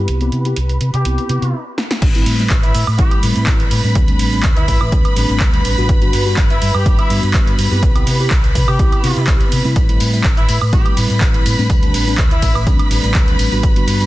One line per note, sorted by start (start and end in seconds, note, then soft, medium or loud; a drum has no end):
0.00 0.18 B3 medium
0.00 0.18 C4 medium
0.00 0.18 E4 medium
0.00 0.19 G4 medium
0.00 1.54 B4 medium
0.00 1.54 B5 medium
0.08 0.28 C2 medium
0.08 closed hi-hat medium
0.21 0.42 B3 medium
0.21 0.42 C4 medium
0.21 0.42 E4 medium
0.21 0.43 G4 medium
0.21 closed hi-hat soft
0.32 0.52 C3 medium
0.32 closed hi-hat soft
0.32 tambourine medium
0.45 0.57 B3 medium
0.45 0.57 C4 medium
0.45 0.57 E4 medium
0.45 0.57 G4 medium
0.45 closed hi-hat soft
0.45 tambourine medium
0.56 0.76 C2 medium
0.56 closed hi-hat medium
0.69 closed hi-hat soft
0.81 0.91 C3 loud
0.81 closed hi-hat medium
0.81 tambourine medium
0.94 1.03 C3 loud
0.94 1.61 G4 medium
0.94 closed hi-hat soft
1.05 1.15 C2 medium
1.05 1.27 B3 medium
1.05 1.27 C4 medium
1.05 1.27 E4 medium
1.05 1.27 G4 medium
1.05 closed hi-hat loud
1.18 muted fingered electric bass stroke soft
1.18 closed hi-hat soft
1.29 1.39 C3 medium
1.29 1.53 B3 medium
1.29 1.54 C4 medium
1.29 1.54 E4 medium
1.29 1.54 G4 medium
1.29 closed hi-hat medium
1.42 1.51 C3 medium
1.42 closed hi-hat soft
1.42 tambourine soft
1.78 snare medium
1.91 snare medium
2.02 2.22 A1 loud
2.02 9.75 B4 medium
2.02 9.75 B5 medium
2.02 kick loud
2.02 closed hi-hat medium
2.02 crash loud
2.02 shaker soft
2.14 2.36 G3 medium
2.14 2.36 A3 medium
2.14 2.36 C4 medium
2.14 2.36 E4 medium
2.14 closed hi-hat medium
2.26 2.46 A2 medium
2.26 open hi-hat loud
2.26 ride medium
2.26 shaker medium
2.39 2.50 G3 medium
2.39 2.50 A3 medium
2.39 2.50 C4 medium
2.39 2.51 E4 medium
2.39 shaker soft
2.50 2.70 A1 loud
2.50 kick loud
2.50 clap loud
2.50 closed hi-hat medium
2.50 shaker soft
2.63 2.83 E4 medium
2.63 closed hi-hat medium
2.63 shaker soft
2.75 2.85 A2 loud
2.75 open hi-hat loud
2.75 ride medium
2.75 shaker medium
2.87 2.97 A2 medium
2.87 high woodblock medium
2.87 shaker soft
2.98 3.09 A1 loud
2.98 3.20 G3 medium
2.98 3.20 A3 medium
2.98 3.20 C4 medium
2.98 3.21 E4 medium
2.98 3.19 G4 medium
2.98 kick loud
2.98 closed hi-hat medium
2.98 shaker soft
3.11 closed hi-hat medium
3.11 high woodblock medium
3.22 3.33 A2 medium
3.22 3.81 G3 medium
3.22 3.81 A3 medium
3.22 3.81 C4 medium
3.22 3.82 E4 medium
3.22 open hi-hat loud
3.22 ride medium
3.22 shaker medium
3.36 3.48 A2 loud
3.36 closed hi-hat soft
3.36 shaker soft
3.46 3.67 A1 loud
3.46 kick loud
3.46 clap loud
3.46 closed hi-hat medium
3.46 shaker soft
3.60 closed hi-hat medium
3.71 3.81 A2 medium
3.71 open hi-hat loud
3.71 ride medium
3.71 shaker medium
3.84 3.93 A2 medium
3.84 4.05 G3 medium
3.84 4.05 A3 medium
3.84 4.05 C4 medium
3.84 4.06 D4 medium
3.84 shaker soft
3.95 4.15 D2 loud
3.95 kick loud
3.95 closed hi-hat medium
3.95 shaker soft
4.08 4.29 G3 medium
4.08 4.30 A3 medium
4.08 4.30 C4 medium
4.08 4.30 D4 medium
4.08 closed hi-hat medium
4.19 4.39 A1 medium
4.19 open hi-hat loud
4.19 ride medium
4.19 shaker medium
4.32 4.44 G3 medium
4.32 4.44 A3 medium
4.32 4.44 C4 medium
4.32 4.44 D4 medium
4.32 shaker soft
4.43 4.64 D2 loud
4.43 kick loud
4.43 clap loud
4.43 closed hi-hat medium
4.43 shaker soft
4.57 4.92 E4 medium
4.57 closed hi-hat medium
4.57 shaker soft
4.68 4.78 A1 loud
4.68 kick medium
4.68 open hi-hat loud
4.68 ride medium
4.68 shaker medium
4.81 4.90 A1 loud
4.81 high woodblock medium
4.81 shaker soft
4.92 5.03 D2 medium
4.92 5.14 G3 medium
4.92 5.14 A3 medium
4.92 5.14 C4 medium
4.92 5.14 D4 medium
4.92 kick loud
4.92 closed hi-hat medium
4.92 shaker soft
5.05 muted fingered electric bass stroke soft
5.05 closed hi-hat medium
5.05 high woodblock medium
5.16 5.27 A1 medium
5.16 5.74 G3 medium
5.16 5.75 A3 medium
5.16 5.75 C4 medium
5.16 5.75 D4 medium
5.16 open hi-hat loud
5.16 ride medium
5.16 shaker medium
5.29 5.41 A1 loud
5.29 closed hi-hat soft
5.29 shaker soft
5.40 5.60 D2 loud
5.40 kick loud
5.40 clap loud
5.40 closed hi-hat medium
5.40 shaker soft
5.54 closed hi-hat medium
5.65 5.75 A1 medium
5.65 open hi-hat loud
5.65 ride medium
5.65 shaker medium
5.77 5.87 A1 medium
5.77 5.99 G3 medium
5.77 5.99 B3 medium
5.77 5.99 D4 medium
5.77 5.99 F#4 medium
5.77 shaker soft
5.89 6.09 G1 loud
5.89 kick loud
5.89 closed hi-hat medium
5.89 shaker soft
6.01 6.23 G3 medium
6.01 6.23 B3 medium
6.01 6.23 D4 medium
6.01 6.23 F#4 medium
6.01 closed hi-hat soft
6.13 6.33 G2 medium
6.13 open hi-hat loud
6.13 ride medium
6.13 shaker medium
6.25 6.37 G3 medium
6.25 6.37 B3 medium
6.25 6.37 D4 medium
6.25 6.37 F#4 medium
6.25 shaker soft
6.37 6.57 G1 loud
6.37 kick loud
6.37 clap loud
6.37 closed hi-hat medium
6.37 shaker soft
6.50 6.71 E4 medium
6.50 closed hi-hat medium
6.50 shaker soft
6.62 6.72 G2 loud
6.62 open hi-hat loud
6.62 ride medium
6.62 shaker medium
6.74 6.84 G2 loud
6.74 6.95 G4 medium
6.74 high woodblock medium
6.74 shaker soft
6.85 6.96 G1 loud
6.85 7.07 G3 medium
6.85 7.07 B3 medium
6.85 7.07 D4 medium
6.85 7.07 F#4 medium
6.85 kick loud
6.85 closed hi-hat medium
6.85 shaker soft
6.99 7.19 E4 loud
6.99 closed hi-hat medium
6.99 high woodblock medium
7.09 7.20 G2 medium
7.09 7.68 G3 medium
7.09 7.68 B3 medium
7.09 7.68 D4 medium
7.09 7.69 F#4 medium
7.09 open hi-hat loud
7.09 ride medium
7.09 shaker medium
7.23 7.36 G2 loud
7.23 closed hi-hat soft
7.23 shaker soft
7.34 7.54 G1 loud
7.34 kick loud
7.34 clap loud
7.34 closed hi-hat medium
7.34 shaker soft
7.47 closed hi-hat medium
7.58 7.69 G2 medium
7.58 open hi-hat loud
7.58 ride medium
7.58 shaker medium
7.71 7.80 G2 medium
7.71 7.92 B3 medium
7.71 7.92 C4 medium
7.71 7.92 E4 medium
7.71 7.92 G4 medium
7.71 shaker soft
7.83 8.02 C2 loud
7.83 kick loud
7.83 closed hi-hat medium
7.83 shaker soft
7.95 8.16 B3 medium
7.95 8.17 C4 medium
7.95 8.17 E4 medium
7.95 8.17 G4 medium
7.95 closed hi-hat soft
7.95 high woodblock medium
7.95 shaker soft
8.07 8.26 C3 medium
8.07 open hi-hat loud
8.07 ride medium
8.07 shaker medium
8.19 8.31 B3 medium
8.19 8.31 C4 medium
8.19 8.31 E4 medium
8.19 8.31 G4 medium
8.19 shaker soft
8.31 8.51 C2 medium
8.31 kick loud
8.31 clap loud
8.31 closed hi-hat medium
8.31 shaker soft
8.44 closed hi-hat medium
8.44 shaker soft
8.55 8.65 C3 loud
8.55 kick medium
8.55 open hi-hat loud
8.55 ride medium
8.55 shaker medium
8.68 8.77 C3 loud
8.68 9.35 G4 medium
8.68 high woodblock medium
8.68 shaker soft
8.79 8.90 C2 loud
8.79 9.01 B3 medium
8.79 9.01 C4 medium
8.79 9.01 E4 medium
8.79 9.01 G4 medium
8.79 kick loud
8.79 closed hi-hat medium
8.79 shaker soft
8.92 muted fingered electric bass stroke soft
8.92 closed hi-hat medium
8.92 high woodblock medium
9.03 9.14 C3 medium
9.03 9.61 B3 medium
9.03 9.62 C4 medium
9.03 9.62 E4 medium
9.03 9.62 G4 medium
9.03 open hi-hat loud
9.03 ride medium
9.03 shaker medium
9.16 9.26 C3 medium
9.16 closed hi-hat soft
9.16 shaker soft
9.27 9.38 C2 loud
9.27 kick loud
9.27 clap loud
9.27 closed hi-hat medium
9.27 shaker soft
9.41 closed hi-hat medium
9.52 9.62 C3 medium
9.52 open hi-hat loud
9.52 ride medium
9.52 shaker medium
9.64 9.74 C3 medium
9.64 9.86 G3 medium
9.64 9.86 A3 medium
9.64 9.86 C4 medium
9.64 9.86 E4 medium
9.64 shaker soft
9.76 9.96 A1 loud
9.76 14.06 B4 medium
9.76 14.06 B5 medium
9.76 kick loud
9.76 closed hi-hat medium
9.76 tambourine soft
9.76 shaker soft
9.89 10.10 G3 medium
9.89 10.10 A3 medium
9.89 10.10 C4 medium
9.89 10.10 E4 medium
9.89 closed hi-hat medium
10.00 10.20 A2 medium
10.00 open hi-hat loud
10.00 ride medium
10.00 tambourine medium
10.00 shaker medium
10.13 10.24 G3 medium
10.13 10.24 A3 medium
10.13 10.24 C4 medium
10.13 10.25 E4 medium
10.13 tambourine medium
10.13 shaker soft
10.24 10.44 A1 medium
10.24 kick loud
10.24 clap loud
10.24 closed hi-hat medium
10.24 shaker soft
10.37 10.58 E4 loud
10.37 closed hi-hat medium
10.37 shaker soft
10.49 10.59 A2 loud
10.49 open hi-hat loud
10.49 ride medium
10.49 tambourine loud
10.49 shaker medium
10.62 10.71 A2 loud
10.62 high woodblock medium
10.62 shaker soft
10.73 10.83 A1 loud
10.73 10.94 G3 medium
10.73 10.94 A3 medium
10.73 10.95 C4 medium
10.73 10.95 E4 medium
10.73 10.94 G4 medium
10.73 kick loud
10.73 closed hi-hat medium
10.73 tambourine soft
10.73 shaker soft
10.86 closed hi-hat medium
10.86 high woodblock medium
10.97 11.07 A2 medium
10.97 11.55 G3 medium
10.97 11.55 A3 medium
10.97 11.55 C4 medium
10.97 11.56 E4 medium
10.97 open hi-hat loud
10.97 ride medium
10.97 tambourine medium
10.97 shaker medium
11.10 11.23 A2 loud
11.10 closed hi-hat soft
11.10 tambourine soft
11.10 shaker soft
11.21 11.41 A1 loud
11.21 kick loud
11.21 clap loud
11.21 closed hi-hat medium
11.21 tambourine soft
11.21 shaker soft
11.34 closed hi-hat soft
11.46 11.56 A2 medium
11.46 open hi-hat loud
11.46 ride medium
11.46 tambourine loud
11.46 shaker medium
11.58 11.68 A2 medium
11.58 11.79 G3 medium
11.58 11.80 A3 medium
11.58 11.80 C4 medium
11.58 11.80 D4 medium
11.58 tambourine medium
11.58 shaker soft
11.70 11.89 D2 loud
11.70 kick loud
11.70 closed hi-hat medium
11.70 tambourine soft
11.70 shaker soft
11.82 12.04 G3 medium
11.82 12.04 A3 medium
11.82 12.04 C4 medium
11.82 12.04 D4 medium
11.82 closed hi-hat medium
11.94 12.14 A1 medium
11.94 open hi-hat loud
11.94 ride medium
11.94 tambourine medium
11.94 shaker medium
12.07 12.18 G3 medium
12.07 12.18 A3 medium
12.07 12.18 C4 medium
12.07 12.19 D4 medium
12.07 tambourine medium
12.07 shaker soft
12.18 12.38 D2 loud
12.18 kick loud
12.18 clap loud
12.18 closed hi-hat medium
12.18 tambourine soft
12.18 shaker soft
12.31 12.67 E4 medium
12.31 closed hi-hat medium
12.31 shaker soft
12.42 12.53 A1 loud
12.42 kick medium
12.42 open hi-hat loud
12.42 ride medium
12.42 tambourine medium
12.42 shaker medium
12.55 12.64 A1 loud
12.55 tambourine medium
12.55 high woodblock medium
12.55 shaker soft
12.67 12.77 D2 loud
12.67 12.88 G3 medium
12.67 12.88 A3 medium
12.67 12.88 C4 medium
12.67 12.89 D4 medium
12.67 kick loud
12.67 closed hi-hat medium
12.67 tambourine soft
12.67 shaker soft
12.79 muted fingered electric bass stroke soft
12.79 closed hi-hat medium
12.79 high woodblock medium
12.90 13.01 A1 medium
12.90 13.49 G3 medium
12.90 13.49 A3 medium
12.90 13.49 C4 medium
12.90 13.49 D4 medium
12.90 open hi-hat loud
12.90 ride medium
12.90 tambourine medium
12.90 shaker medium
13.03 13.15 A1 loud
13.03 closed hi-hat soft
13.03 tambourine soft
13.03 shaker soft
13.14 13.35 D2 loud
13.14 kick loud
13.14 clap loud
13.14 closed hi-hat medium
13.14 tambourine soft
13.14 shaker soft
13.28 closed hi-hat medium
13.39 13.49 A1 medium
13.39 open hi-hat loud
13.39 ride medium
13.39 tambourine medium
13.39 shaker medium
13.51 13.61 A1 medium
13.51 13.73 G3 medium
13.51 13.73 B3 medium
13.51 13.73 D4 medium
13.51 13.73 F#4 medium
13.51 tambourine soft
13.51 shaker soft
13.63 13.83 G1 loud
13.63 kick loud
13.63 closed hi-hat medium
13.63 tambourine soft
13.63 shaker soft
13.76 13.97 G3 medium
13.76 13.97 B3 medium
13.76 13.97 D4 medium
13.76 13.98 F#4 medium
13.76 closed hi-hat medium
13.87 14.06 G2 medium
13.87 open hi-hat loud
13.87 ride medium
13.87 tambourine medium
13.87 shaker medium
14.00 14.06 G3 medium
14.00 14.06 B3 medium
14.00 14.06 D4 medium
14.00 14.06 F#4 medium
14.00 tambourine soft
14.00 shaker soft